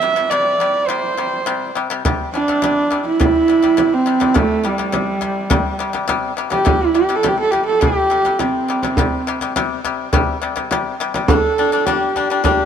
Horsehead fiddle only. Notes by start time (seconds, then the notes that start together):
Already playing: E5
0.30 D5
0.87 C5
2.33 D4
3.07 E4
3.93 C4
4.38 A3
4.66 G3
6.51 G4
6.81 E4
6.95 G4
7.16 A4
7.28 G4
7.39 A4
7.51 G4
7.66 A4
7.80 G4
8.41 C4
11.29 A4
11.86 G4
12.45 G4